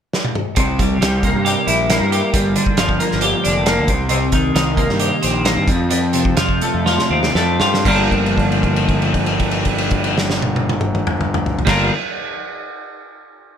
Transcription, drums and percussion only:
0.13 snare medium
0.25 high tom medium
0.35 mid tom medium
0.56 kick loud
0.56 closed hi-hat loud
0.79 kick medium
0.79 closed hi-hat medium
1.02 snare loud
1.02 closed hi-hat medium
1.23 kick medium
1.23 closed hi-hat medium
1.46 closed hi-hat medium
1.68 closed hi-hat medium
1.90 snare loud
1.90 closed hi-hat medium
2.12 closed hi-hat medium
2.34 kick loud
2.34 closed hi-hat loud
2.56 closed hi-hat medium
2.66 kick medium
2.77 snare loud
2.77 closed hi-hat medium
2.89 kick medium
3.00 closed hi-hat medium
3.11 snare soft
3.21 closed hi-hat medium
3.45 closed hi-hat medium
3.66 snare loud
3.66 closed hi-hat medium
3.88 kick loud
3.88 closed hi-hat medium
4.09 closed hi-hat medium
4.32 kick medium
4.32 closed hi-hat medium
4.56 snare loud
4.56 closed hi-hat loud
4.77 kick medium
4.77 closed hi-hat medium
4.89 snare soft
5.00 closed hi-hat medium
5.23 closed hi-hat medium
5.45 snare loud
5.45 closed hi-hat loud
5.68 kick loud
5.68 closed hi-hat medium
5.91 closed hi-hat medium
6.13 closed hi-hat medium
6.25 kick medium
6.37 snare loud
6.37 closed hi-hat loud
6.49 kick medium
6.61 closed hi-hat medium
6.86 snare medium
6.99 snare medium
7.23 snare medium
7.35 snare medium
7.60 snare medium
7.74 snare medium
7.85 kick loud
7.85 crash medium
8.11 kick medium
8.11 crash soft
8.26 crash soft
8.38 kick medium
8.38 crash soft
8.52 crash soft
8.63 kick medium
8.63 crash soft
8.76 crash medium
8.89 kick medium
8.89 crash soft
9.02 crash soft
9.14 kick medium
9.14 crash soft
9.26 crash soft
9.39 kick medium
9.39 crash soft
9.51 crash soft
9.65 kick medium
9.65 crash medium
9.78 crash medium
9.90 kick medium
9.90 crash medium
10.04 crash medium
10.18 snare medium
10.30 snare medium
10.42 high tom medium
10.56 high tom medium
10.69 high tom medium
10.81 mid tom loud
10.95 mid tom medium
11.07 mid tom loud
11.21 mid tom medium
11.34 mid tom loud
11.46 floor tom loud
11.59 floor tom loud
11.67 kick medium
11.67 snare medium
11.67 crash loud

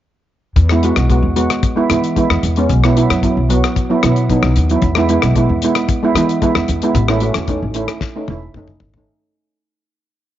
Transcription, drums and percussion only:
0.56 kick medium
0.56 closed hi-hat medium
0.69 cross-stick medium
0.83 closed hi-hat medium
0.96 cross-stick medium
0.96 closed hi-hat medium
1.10 kick medium
1.10 closed hi-hat medium
1.36 closed hi-hat medium
1.50 cross-stick medium
1.50 closed hi-hat medium
1.63 kick loud
1.63 closed hi-hat medium
1.90 cross-stick medium
1.90 closed hi-hat medium
2.04 closed hi-hat medium
2.16 kick medium
2.16 closed hi-hat medium
2.30 cross-stick medium
2.43 closed hi-hat medium
2.56 closed hi-hat medium
2.69 kick medium
2.69 closed hi-hat medium
2.84 cross-stick medium
2.97 closed hi-hat medium
3.10 cross-stick medium
3.10 closed hi-hat medium
3.23 kick medium
3.23 closed hi-hat medium
3.50 closed hi-hat medium
3.64 cross-stick medium
3.64 closed hi-hat soft
3.76 kick loud
3.76 closed hi-hat medium
4.03 cross-stick medium
4.03 closed hi-hat medium
4.16 closed hi-hat medium
4.29 kick medium
4.29 closed hi-hat soft
4.43 cross-stick medium
4.56 closed hi-hat medium
4.69 closed hi-hat medium
4.82 kick medium
4.82 closed hi-hat medium
4.95 cross-stick medium
5.09 closed hi-hat medium
5.22 cross-stick medium
5.22 closed hi-hat medium
5.35 kick medium
5.35 closed hi-hat medium
5.62 closed hi-hat medium
5.75 cross-stick medium
5.75 closed hi-hat medium
5.88 kick loud
5.88 closed hi-hat medium
6.16 cross-stick medium
6.16 closed hi-hat medium
6.29 closed hi-hat medium
6.42 kick medium
6.42 closed hi-hat medium
6.55 cross-stick medium
6.68 closed hi-hat medium
6.82 closed hi-hat medium
6.95 kick medium
6.95 closed hi-hat medium
7.08 cross-stick medium
7.20 closed hi-hat medium
7.34 cross-stick medium
7.34 closed hi-hat medium
7.48 kick medium
7.48 closed hi-hat medium
7.74 closed hi-hat medium
7.88 cross-stick medium
7.88 closed hi-hat medium
8.01 kick loud
8.01 snare medium
8.28 high tom medium
8.54 kick medium
8.54 mid tom medium
8.68 mid tom medium
8.80 floor tom medium
8.94 floor tom medium

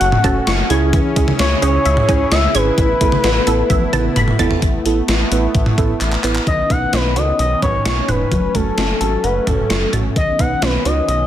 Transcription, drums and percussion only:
0.01 closed hi-hat medium
0.12 mid tom medium
0.24 kick medium
0.24 closed hi-hat medium
0.24 cowbell medium
0.47 snare loud
0.47 closed hi-hat medium
0.70 closed hi-hat medium
0.93 kick loud
0.93 closed hi-hat medium
1.16 kick medium
1.16 closed hi-hat medium
1.28 mid tom medium
1.39 snare loud
1.39 closed hi-hat medium
1.62 closed hi-hat medium
1.62 cowbell medium
1.85 closed hi-hat medium
1.97 mid tom medium
2.09 kick medium
2.09 closed hi-hat medium
2.09 cowbell medium
2.32 snare loud
2.32 closed hi-hat medium
2.55 closed hi-hat medium
2.78 kick loud
2.78 closed hi-hat medium
3.01 kick medium
3.01 closed hi-hat medium
3.12 mid tom medium
3.24 snare loud
3.24 closed hi-hat medium
3.47 closed hi-hat medium
3.70 kick medium
3.70 closed hi-hat medium
3.70 high tom medium
3.93 closed hi-hat medium
3.93 mid tom medium
4.16 closed hi-hat medium
4.16 mid tom medium
4.28 mid tom medium
4.39 closed hi-hat medium
4.39 floor tom loud
4.51 floor tom medium
4.62 kick loud
4.62 closed hi-hat medium
4.86 closed hi-hat medium
5.08 snare loud
5.08 closed hi-hat medium
5.32 closed hi-hat medium
5.55 kick medium
5.55 closed hi-hat medium
5.66 mid tom medium
5.78 kick medium
5.78 closed hi-hat medium
6.01 clap medium
6.01 closed hi-hat medium
6.12 clap medium
6.24 clap medium
6.24 closed hi-hat medium
6.35 clap medium
6.47 kick medium
6.47 closed hi-hat medium
6.70 kick medium
6.70 closed hi-hat medium
6.93 snare loud
6.93 closed hi-hat medium
7.16 closed hi-hat medium
7.39 closed hi-hat medium
7.62 kick medium
7.62 closed hi-hat medium
7.62 mid tom medium
7.85 snare loud
7.85 closed hi-hat medium
8.08 closed hi-hat medium
8.08 mid tom medium
8.32 kick medium
8.32 closed hi-hat medium
8.55 kick medium
8.55 closed hi-hat medium
8.78 snare loud
8.78 closed hi-hat medium
9.01 closed hi-hat medium
9.24 closed hi-hat medium
9.47 kick medium
9.47 closed hi-hat medium
9.47 mid tom medium
9.70 snare loud
9.70 closed hi-hat medium
9.93 closed hi-hat medium
9.93 mid tom medium
10.16 kick loud
10.16 closed hi-hat medium
10.39 kick medium
10.39 closed hi-hat medium
10.62 snare loud
10.62 closed hi-hat medium
10.85 closed hi-hat medium
11.09 closed hi-hat medium

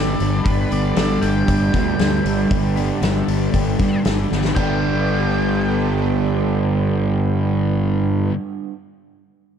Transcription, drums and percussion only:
0.20 open hi-hat soft
0.46 kick loud
0.46 open hi-hat medium
0.71 open hi-hat soft
0.96 snare loud
0.96 open hi-hat medium
1.22 open hi-hat medium
1.48 kick medium
1.48 open hi-hat medium
1.74 kick medium
1.74 snare soft
1.74 open hi-hat medium
1.99 snare medium
1.99 open hi-hat medium
2.26 open hi-hat medium
2.51 kick loud
2.51 open hi-hat medium
2.77 open hi-hat soft
3.03 snare loud
3.03 open hi-hat medium
3.28 open hi-hat medium
3.54 kick medium
3.54 open hi-hat medium
3.80 kick medium
3.80 snare soft
3.80 open hi-hat medium
4.05 snare loud
4.05 open hi-hat medium
4.32 snare medium
4.45 snare medium
4.56 kick medium
4.56 splash medium

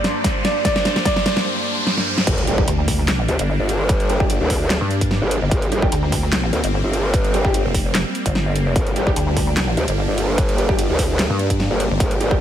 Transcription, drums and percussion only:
0.04 snare medium
0.04 closed hi-hat medium
0.24 kick loud
0.24 snare medium
0.24 closed hi-hat medium
0.45 snare medium
0.45 closed hi-hat medium
0.65 kick loud
0.65 snare medium
0.65 closed hi-hat medium
0.76 snare medium
0.85 snare medium
0.85 closed hi-hat soft
0.96 snare medium
1.05 kick loud
1.05 snare loud
1.05 closed hi-hat medium
1.16 snare medium
1.26 snare loud
1.26 closed hi-hat medium
1.37 snare medium
1.87 snare medium
1.97 snare medium
2.18 snare medium
2.27 kick loud
2.27 closed hi-hat medium
2.27 crash loud
2.38 closed hi-hat soft
2.47 closed hi-hat medium
2.58 kick loud
2.68 closed hi-hat medium
2.88 kick medium
2.88 open hi-hat medium
3.08 snare loud
3.08 clap medium
3.08 closed hi-hat medium
3.28 closed hi-hat medium
3.39 closed hi-hat medium
3.69 closed hi-hat medium
3.89 kick loud
3.89 closed hi-hat medium
4.00 closed hi-hat soft
4.10 closed hi-hat medium
4.20 kick loud
4.30 closed hi-hat medium
4.50 kick medium
4.50 open hi-hat medium
4.70 snare loud
4.70 clap medium
4.70 closed hi-hat medium
4.91 closed hi-hat medium
5.01 kick medium
5.01 closed hi-hat medium
5.11 snare medium
5.31 closed hi-hat medium
5.51 kick loud
5.51 closed hi-hat medium
5.62 closed hi-hat soft
5.72 closed hi-hat medium
5.82 kick loud
5.92 closed hi-hat medium
6.12 kick medium
6.12 open hi-hat medium
6.33 snare loud
6.33 clap medium
6.33 closed hi-hat medium
6.53 closed hi-hat medium
6.64 closed hi-hat medium
6.93 closed hi-hat medium
7.14 kick loud
7.14 closed hi-hat medium
7.24 closed hi-hat soft
7.34 closed hi-hat soft
7.45 kick loud
7.54 closed hi-hat medium
7.74 kick medium
7.74 open hi-hat medium
7.95 snare loud
7.95 clap medium
7.95 closed hi-hat medium
8.15 closed hi-hat medium
8.26 kick medium
8.26 closed hi-hat medium
8.35 snare medium
8.56 closed hi-hat medium
8.76 kick loud
8.76 closed hi-hat medium
8.87 closed hi-hat soft
8.96 closed hi-hat medium
9.07 kick loud
9.16 closed hi-hat medium
9.37 kick medium
9.37 open hi-hat medium
9.57 snare loud
9.57 clap medium
9.57 closed hi-hat medium
9.77 closed hi-hat medium
9.88 closed hi-hat medium
10.18 closed hi-hat medium
10.38 kick loud
10.38 closed hi-hat medium
10.49 closed hi-hat soft
10.58 closed hi-hat medium
10.69 kick loud
10.79 closed hi-hat medium
10.99 kick medium
10.99 open hi-hat loud
11.19 snare loud
11.19 clap medium
11.19 closed hi-hat medium
11.39 closed hi-hat medium
11.50 kick medium
11.50 closed hi-hat medium
11.60 snare medium
11.80 closed hi-hat medium
12.00 kick loud
12.00 closed hi-hat medium
12.11 closed hi-hat soft
12.21 closed hi-hat medium
12.31 kick loud

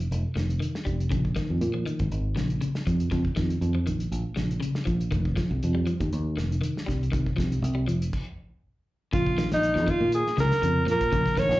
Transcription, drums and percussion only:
0.00 closed hi-hat soft
0.12 closed hi-hat medium
0.37 snare medium
0.37 closed hi-hat soft
0.50 closed hi-hat soft
0.62 closed hi-hat medium
0.75 snare medium
0.87 kick medium
0.87 closed hi-hat soft
1.00 closed hi-hat soft
1.11 kick medium
1.11 closed hi-hat medium
1.25 kick medium
1.36 kick medium
1.36 snare medium
1.36 closed hi-hat medium
1.61 closed hi-hat medium
1.87 closed hi-hat medium
1.99 kick medium
1.99 closed hi-hat soft
2.12 closed hi-hat medium
2.37 snare medium
2.37 closed hi-hat medium
2.50 closed hi-hat soft
2.62 closed hi-hat medium
2.75 snare medium
2.87 kick medium
2.87 closed hi-hat medium
3.00 closed hi-hat soft
3.12 kick medium
3.12 snare soft
3.12 closed hi-hat medium
3.25 kick medium
3.37 kick medium
3.37 snare medium
3.37 closed hi-hat medium
3.50 closed hi-hat medium
3.62 closed hi-hat medium
3.87 closed hi-hat medium
4.00 closed hi-hat medium
4.12 closed hi-hat medium
4.37 snare medium
4.37 closed hi-hat soft
4.51 closed hi-hat soft
4.62 closed hi-hat medium
4.75 snare medium
4.87 kick medium
4.87 closed hi-hat soft
5.01 closed hi-hat soft
5.12 kick medium
5.12 closed hi-hat medium
5.25 kick medium
5.37 kick medium
5.37 snare medium
5.37 closed hi-hat medium
5.63 closed hi-hat medium
5.87 closed hi-hat medium
6.01 kick medium
6.01 closed hi-hat medium
6.13 closed hi-hat medium
6.38 snare medium
6.38 closed hi-hat soft
6.52 closed hi-hat soft
6.63 closed hi-hat medium
6.77 snare medium
6.88 kick medium
6.88 snare soft
6.88 closed hi-hat medium
7.03 closed hi-hat soft
7.13 kick medium
7.13 closed hi-hat medium
7.26 kick medium
7.38 kick medium
7.38 snare medium
7.38 closed hi-hat medium
7.52 closed hi-hat soft
7.64 closed hi-hat medium
7.89 closed hi-hat medium
8.02 closed hi-hat medium
8.13 kick medium
8.13 crash medium
9.13 kick medium
9.13 closed hi-hat medium
9.26 kick medium
9.38 snare medium
9.38 closed hi-hat medium
9.52 snare medium
9.52 closed hi-hat soft
9.63 closed hi-hat medium
9.76 snare soft
9.88 kick medium
9.88 closed hi-hat medium
10.12 closed hi-hat medium
10.27 snare soft
10.38 snare medium
10.38 closed hi-hat soft
10.52 snare medium
10.52 closed hi-hat soft
10.63 closed hi-hat medium
10.88 snare soft
10.88 closed hi-hat medium
11.01 kick medium
11.01 closed hi-hat medium
11.13 kick medium
11.13 closed hi-hat medium
11.26 kick medium
11.26 snare soft
11.37 kick medium
11.37 snare medium
11.37 closed hi-hat medium
11.50 snare medium

